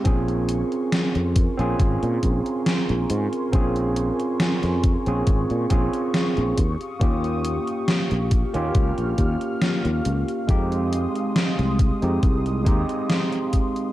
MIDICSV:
0, 0, Header, 1, 5, 480
1, 0, Start_track
1, 0, Tempo, 869565
1, 31, Time_signature, 4, 2, 24, 8
1, 7686, End_track
2, 0, Start_track
2, 0, Title_t, "Analog synth pad"
2, 0, Program_c, 0, 89
2, 28, Note_on_c, 0, 84, 75
2, 28, Note_on_c, 0, 85, 92
2, 29, Note_on_c, 0, 70, 78
2, 29, Note_on_c, 0, 80, 76
2, 3608, Note_off_c, 0, 70, 0
2, 3608, Note_off_c, 0, 80, 0
2, 3608, Note_off_c, 0, 84, 0
2, 3631, Note_on_c, 0, 87, 90
2, 3632, Note_on_c, 0, 77, 75
2, 3634, Note_on_c, 0, 67, 81
2, 4582, Note_off_c, 0, 87, 0
2, 4591, Note_on_c, 0, 89, 92
2, 5767, Note_off_c, 0, 85, 0
2, 5771, Note_off_c, 0, 67, 0
2, 5779, Note_off_c, 0, 89, 0
2, 5789, Note_on_c, 0, 56, 80
2, 5789, Note_on_c, 0, 87, 88
2, 5790, Note_on_c, 0, 84, 72
2, 7686, Note_off_c, 0, 56, 0
2, 7686, Note_off_c, 0, 77, 0
2, 7686, Note_off_c, 0, 84, 0
2, 7686, Note_off_c, 0, 87, 0
2, 7686, End_track
3, 0, Start_track
3, 0, Title_t, "Tine electric piano"
3, 0, Program_c, 1, 4
3, 0, Control_c, 1, 64, 127
3, 24, Note_on_c, 1, 60, 81
3, 29, Note_on_c, 1, 61, 77
3, 35, Note_on_c, 1, 65, 74
3, 37, Control_c, 1, 64, 0
3, 41, Note_on_c, 1, 68, 94
3, 119, Control_c, 1, 64, 127
3, 844, Note_off_c, 1, 60, 0
3, 847, Note_off_c, 1, 61, 0
3, 850, Note_off_c, 1, 65, 0
3, 853, Note_off_c, 1, 68, 0
3, 869, Note_on_c, 1, 60, 90
3, 875, Note_on_c, 1, 61, 84
3, 880, Note_on_c, 1, 65, 84
3, 885, Note_on_c, 1, 68, 99
3, 1919, Note_off_c, 1, 60, 0
3, 1923, Note_off_c, 1, 61, 0
3, 1925, Note_off_c, 1, 65, 0
3, 1928, Note_off_c, 1, 68, 0
3, 1944, Note_on_c, 1, 60, 81
3, 1950, Note_on_c, 1, 61, 76
3, 1956, Note_on_c, 1, 65, 76
3, 1960, Note_on_c, 1, 68, 91
3, 2764, Note_off_c, 1, 60, 0
3, 2767, Note_off_c, 1, 61, 0
3, 2770, Note_off_c, 1, 65, 0
3, 2772, Note_off_c, 1, 68, 0
3, 2795, Note_on_c, 1, 60, 72
3, 2798, Note_on_c, 1, 61, 69
3, 2801, Note_on_c, 1, 65, 66
3, 2804, Note_on_c, 1, 68, 81
3, 3122, Note_off_c, 1, 60, 0
3, 3124, Note_off_c, 1, 61, 0
3, 3126, Note_off_c, 1, 65, 0
3, 3127, Note_off_c, 1, 68, 0
3, 3145, Note_on_c, 1, 60, 81
3, 3148, Note_on_c, 1, 61, 73
3, 3152, Note_on_c, 1, 65, 74
3, 3154, Note_on_c, 1, 68, 90
3, 3614, Note_off_c, 1, 60, 0
3, 3616, Note_off_c, 1, 61, 0
3, 3618, Note_off_c, 1, 65, 0
3, 3619, Note_off_c, 1, 68, 0
3, 3638, Control_c, 1, 64, 0
3, 3748, Control_c, 1, 64, 127
3, 3861, Note_on_c, 1, 58, 80
3, 3867, Note_on_c, 1, 61, 76
3, 3872, Note_on_c, 1, 65, 75
3, 3879, Note_on_c, 1, 67, 94
3, 4683, Note_off_c, 1, 58, 0
3, 4685, Note_off_c, 1, 61, 0
3, 4688, Note_off_c, 1, 65, 0
3, 4691, Note_off_c, 1, 67, 0
3, 4711, Note_on_c, 1, 58, 91
3, 4717, Note_on_c, 1, 61, 84
3, 4722, Note_on_c, 1, 65, 84
3, 4727, Note_on_c, 1, 67, 104
3, 5761, Note_off_c, 1, 58, 0
3, 5763, Note_off_c, 1, 61, 0
3, 5766, Note_off_c, 1, 65, 0
3, 5768, Note_off_c, 1, 67, 0
3, 5782, Note_on_c, 1, 56, 83
3, 5789, Note_on_c, 1, 60, 76
3, 5793, Note_on_c, 1, 63, 73
3, 5799, Control_c, 1, 64, 0
3, 5799, Note_on_c, 1, 67, 96
3, 5903, Control_c, 1, 64, 127
3, 6603, Note_off_c, 1, 56, 0
3, 6606, Note_off_c, 1, 60, 0
3, 6609, Note_off_c, 1, 63, 0
3, 6611, Note_off_c, 1, 67, 0
3, 6632, Note_on_c, 1, 56, 69
3, 6637, Note_on_c, 1, 60, 64
3, 6639, Note_on_c, 1, 63, 68
3, 6642, Note_on_c, 1, 67, 79
3, 6961, Note_off_c, 1, 56, 0
3, 6963, Note_off_c, 1, 60, 0
3, 6965, Note_off_c, 1, 63, 0
3, 6966, Note_off_c, 1, 67, 0
3, 6982, Note_on_c, 1, 56, 79
3, 6989, Note_on_c, 1, 60, 70
3, 6993, Note_on_c, 1, 63, 74
3, 7000, Note_on_c, 1, 67, 86
3, 7680, Note_off_c, 1, 56, 0
3, 7683, Note_off_c, 1, 60, 0
3, 7685, Note_off_c, 1, 63, 0
3, 7686, Note_off_c, 1, 67, 0
3, 7686, End_track
4, 0, Start_track
4, 0, Title_t, "Fretless electric bass"
4, 0, Program_c, 2, 35
4, 31, Note_on_c, 2, 34, 96
4, 343, Note_off_c, 2, 34, 0
4, 638, Note_on_c, 2, 41, 76
4, 809, Note_off_c, 2, 41, 0
4, 878, Note_on_c, 2, 34, 92
4, 960, Note_off_c, 2, 34, 0
4, 991, Note_on_c, 2, 32, 94
4, 1083, Note_off_c, 2, 32, 0
4, 1119, Note_on_c, 2, 46, 89
4, 1201, Note_off_c, 2, 46, 0
4, 1232, Note_on_c, 2, 34, 95
4, 1324, Note_off_c, 2, 34, 0
4, 1600, Note_on_c, 2, 34, 90
4, 1682, Note_off_c, 2, 34, 0
4, 1712, Note_on_c, 2, 44, 93
4, 1804, Note_off_c, 2, 44, 0
4, 1950, Note_on_c, 2, 34, 93
4, 2263, Note_off_c, 2, 34, 0
4, 2560, Note_on_c, 2, 41, 82
4, 2730, Note_off_c, 2, 41, 0
4, 2799, Note_on_c, 2, 34, 93
4, 2881, Note_off_c, 2, 34, 0
4, 2911, Note_on_c, 2, 32, 94
4, 3004, Note_off_c, 2, 32, 0
4, 3040, Note_on_c, 2, 46, 89
4, 3121, Note_off_c, 2, 46, 0
4, 3151, Note_on_c, 2, 34, 91
4, 3244, Note_off_c, 2, 34, 0
4, 3520, Note_on_c, 2, 34, 93
4, 3602, Note_off_c, 2, 34, 0
4, 3631, Note_on_c, 2, 39, 93
4, 3724, Note_off_c, 2, 39, 0
4, 3871, Note_on_c, 2, 39, 98
4, 4183, Note_off_c, 2, 39, 0
4, 4480, Note_on_c, 2, 34, 76
4, 4650, Note_off_c, 2, 34, 0
4, 4720, Note_on_c, 2, 39, 96
4, 4801, Note_off_c, 2, 39, 0
4, 4830, Note_on_c, 2, 37, 97
4, 4923, Note_off_c, 2, 37, 0
4, 4959, Note_on_c, 2, 34, 85
4, 5041, Note_off_c, 2, 34, 0
4, 5069, Note_on_c, 2, 39, 93
4, 5163, Note_off_c, 2, 39, 0
4, 5439, Note_on_c, 2, 39, 87
4, 5521, Note_off_c, 2, 39, 0
4, 5554, Note_on_c, 2, 37, 91
4, 5645, Note_off_c, 2, 37, 0
4, 5789, Note_on_c, 2, 41, 98
4, 6102, Note_off_c, 2, 41, 0
4, 6399, Note_on_c, 2, 36, 81
4, 6570, Note_off_c, 2, 36, 0
4, 6640, Note_on_c, 2, 41, 92
4, 6721, Note_off_c, 2, 41, 0
4, 6751, Note_on_c, 2, 36, 99
4, 6992, Note_off_c, 2, 36, 0
4, 6992, Note_on_c, 2, 39, 81
4, 7084, Note_off_c, 2, 39, 0
4, 7686, End_track
5, 0, Start_track
5, 0, Title_t, "Drums"
5, 28, Note_on_c, 9, 42, 65
5, 31, Note_on_c, 9, 36, 115
5, 83, Note_off_c, 9, 42, 0
5, 86, Note_off_c, 9, 36, 0
5, 157, Note_on_c, 9, 42, 39
5, 212, Note_off_c, 9, 42, 0
5, 268, Note_on_c, 9, 42, 92
5, 323, Note_off_c, 9, 42, 0
5, 397, Note_on_c, 9, 42, 37
5, 452, Note_off_c, 9, 42, 0
5, 510, Note_on_c, 9, 38, 118
5, 510, Note_on_c, 9, 42, 68
5, 565, Note_off_c, 9, 38, 0
5, 565, Note_off_c, 9, 42, 0
5, 636, Note_on_c, 9, 42, 38
5, 691, Note_off_c, 9, 42, 0
5, 749, Note_on_c, 9, 42, 92
5, 751, Note_on_c, 9, 36, 101
5, 804, Note_off_c, 9, 42, 0
5, 806, Note_off_c, 9, 36, 0
5, 878, Note_on_c, 9, 42, 39
5, 933, Note_off_c, 9, 42, 0
5, 991, Note_on_c, 9, 36, 119
5, 992, Note_on_c, 9, 42, 62
5, 1046, Note_off_c, 9, 36, 0
5, 1047, Note_off_c, 9, 42, 0
5, 1119, Note_on_c, 9, 42, 39
5, 1174, Note_off_c, 9, 42, 0
5, 1230, Note_on_c, 9, 42, 93
5, 1231, Note_on_c, 9, 36, 57
5, 1285, Note_off_c, 9, 42, 0
5, 1286, Note_off_c, 9, 36, 0
5, 1358, Note_on_c, 9, 42, 42
5, 1413, Note_off_c, 9, 42, 0
5, 1470, Note_on_c, 9, 38, 107
5, 1470, Note_on_c, 9, 42, 61
5, 1525, Note_off_c, 9, 38, 0
5, 1525, Note_off_c, 9, 42, 0
5, 1597, Note_on_c, 9, 42, 39
5, 1652, Note_off_c, 9, 42, 0
5, 1710, Note_on_c, 9, 42, 89
5, 1765, Note_off_c, 9, 42, 0
5, 1837, Note_on_c, 9, 42, 39
5, 1892, Note_off_c, 9, 42, 0
5, 1949, Note_on_c, 9, 42, 67
5, 1950, Note_on_c, 9, 36, 123
5, 2004, Note_off_c, 9, 42, 0
5, 2005, Note_off_c, 9, 36, 0
5, 2075, Note_on_c, 9, 42, 42
5, 2130, Note_off_c, 9, 42, 0
5, 2188, Note_on_c, 9, 42, 94
5, 2243, Note_off_c, 9, 42, 0
5, 2316, Note_on_c, 9, 42, 41
5, 2372, Note_off_c, 9, 42, 0
5, 2428, Note_on_c, 9, 38, 123
5, 2428, Note_on_c, 9, 42, 68
5, 2483, Note_off_c, 9, 38, 0
5, 2483, Note_off_c, 9, 42, 0
5, 2555, Note_on_c, 9, 38, 36
5, 2555, Note_on_c, 9, 42, 38
5, 2610, Note_off_c, 9, 38, 0
5, 2610, Note_off_c, 9, 42, 0
5, 2669, Note_on_c, 9, 42, 94
5, 2670, Note_on_c, 9, 36, 103
5, 2724, Note_off_c, 9, 42, 0
5, 2725, Note_off_c, 9, 36, 0
5, 2795, Note_on_c, 9, 42, 42
5, 2850, Note_off_c, 9, 42, 0
5, 2907, Note_on_c, 9, 42, 66
5, 2910, Note_on_c, 9, 36, 125
5, 2963, Note_off_c, 9, 42, 0
5, 2965, Note_off_c, 9, 36, 0
5, 3036, Note_on_c, 9, 42, 37
5, 3091, Note_off_c, 9, 42, 0
5, 3147, Note_on_c, 9, 42, 94
5, 3150, Note_on_c, 9, 36, 97
5, 3202, Note_off_c, 9, 42, 0
5, 3206, Note_off_c, 9, 36, 0
5, 3276, Note_on_c, 9, 42, 42
5, 3331, Note_off_c, 9, 42, 0
5, 3389, Note_on_c, 9, 38, 111
5, 3389, Note_on_c, 9, 42, 64
5, 3445, Note_off_c, 9, 38, 0
5, 3445, Note_off_c, 9, 42, 0
5, 3515, Note_on_c, 9, 42, 39
5, 3570, Note_off_c, 9, 42, 0
5, 3629, Note_on_c, 9, 42, 92
5, 3630, Note_on_c, 9, 36, 60
5, 3684, Note_off_c, 9, 42, 0
5, 3685, Note_off_c, 9, 36, 0
5, 3757, Note_on_c, 9, 42, 38
5, 3813, Note_off_c, 9, 42, 0
5, 3870, Note_on_c, 9, 36, 122
5, 3870, Note_on_c, 9, 42, 65
5, 3925, Note_off_c, 9, 42, 0
5, 3926, Note_off_c, 9, 36, 0
5, 3998, Note_on_c, 9, 42, 40
5, 4053, Note_off_c, 9, 42, 0
5, 4110, Note_on_c, 9, 42, 92
5, 4165, Note_off_c, 9, 42, 0
5, 4236, Note_on_c, 9, 42, 38
5, 4291, Note_off_c, 9, 42, 0
5, 4349, Note_on_c, 9, 38, 127
5, 4349, Note_on_c, 9, 42, 68
5, 4405, Note_off_c, 9, 38, 0
5, 4405, Note_off_c, 9, 42, 0
5, 4476, Note_on_c, 9, 42, 39
5, 4531, Note_off_c, 9, 42, 0
5, 4588, Note_on_c, 9, 42, 93
5, 4590, Note_on_c, 9, 36, 106
5, 4643, Note_off_c, 9, 42, 0
5, 4645, Note_off_c, 9, 36, 0
5, 4716, Note_on_c, 9, 42, 39
5, 4771, Note_off_c, 9, 42, 0
5, 4828, Note_on_c, 9, 42, 64
5, 4830, Note_on_c, 9, 36, 125
5, 4884, Note_off_c, 9, 42, 0
5, 4885, Note_off_c, 9, 36, 0
5, 4956, Note_on_c, 9, 42, 39
5, 5011, Note_off_c, 9, 42, 0
5, 5068, Note_on_c, 9, 42, 91
5, 5070, Note_on_c, 9, 36, 60
5, 5123, Note_off_c, 9, 42, 0
5, 5125, Note_off_c, 9, 36, 0
5, 5195, Note_on_c, 9, 42, 38
5, 5250, Note_off_c, 9, 42, 0
5, 5308, Note_on_c, 9, 38, 113
5, 5308, Note_on_c, 9, 42, 60
5, 5363, Note_off_c, 9, 38, 0
5, 5363, Note_off_c, 9, 42, 0
5, 5437, Note_on_c, 9, 42, 38
5, 5492, Note_off_c, 9, 42, 0
5, 5549, Note_on_c, 9, 42, 87
5, 5604, Note_off_c, 9, 42, 0
5, 5678, Note_on_c, 9, 42, 38
5, 5733, Note_off_c, 9, 42, 0
5, 5790, Note_on_c, 9, 36, 124
5, 5790, Note_on_c, 9, 42, 63
5, 5845, Note_off_c, 9, 36, 0
5, 5845, Note_off_c, 9, 42, 0
5, 5918, Note_on_c, 9, 42, 40
5, 5973, Note_off_c, 9, 42, 0
5, 6032, Note_on_c, 9, 42, 90
5, 6087, Note_off_c, 9, 42, 0
5, 6158, Note_on_c, 9, 42, 36
5, 6213, Note_off_c, 9, 42, 0
5, 6270, Note_on_c, 9, 38, 123
5, 6270, Note_on_c, 9, 42, 66
5, 6325, Note_off_c, 9, 38, 0
5, 6325, Note_off_c, 9, 42, 0
5, 6398, Note_on_c, 9, 38, 35
5, 6398, Note_on_c, 9, 42, 36
5, 6453, Note_off_c, 9, 38, 0
5, 6453, Note_off_c, 9, 42, 0
5, 6510, Note_on_c, 9, 42, 88
5, 6511, Note_on_c, 9, 36, 108
5, 6565, Note_off_c, 9, 42, 0
5, 6566, Note_off_c, 9, 36, 0
5, 6637, Note_on_c, 9, 42, 37
5, 6693, Note_off_c, 9, 42, 0
5, 6750, Note_on_c, 9, 42, 61
5, 6751, Note_on_c, 9, 36, 125
5, 6805, Note_off_c, 9, 42, 0
5, 6806, Note_off_c, 9, 36, 0
5, 6877, Note_on_c, 9, 42, 36
5, 6933, Note_off_c, 9, 42, 0
5, 6991, Note_on_c, 9, 36, 97
5, 6991, Note_on_c, 9, 42, 86
5, 7046, Note_off_c, 9, 36, 0
5, 7046, Note_off_c, 9, 42, 0
5, 7117, Note_on_c, 9, 42, 39
5, 7172, Note_off_c, 9, 42, 0
5, 7229, Note_on_c, 9, 38, 111
5, 7229, Note_on_c, 9, 42, 57
5, 7285, Note_off_c, 9, 38, 0
5, 7285, Note_off_c, 9, 42, 0
5, 7356, Note_on_c, 9, 42, 36
5, 7411, Note_off_c, 9, 42, 0
5, 7468, Note_on_c, 9, 42, 83
5, 7471, Note_on_c, 9, 36, 59
5, 7523, Note_off_c, 9, 42, 0
5, 7526, Note_off_c, 9, 36, 0
5, 7596, Note_on_c, 9, 42, 38
5, 7652, Note_off_c, 9, 42, 0
5, 7686, End_track
0, 0, End_of_file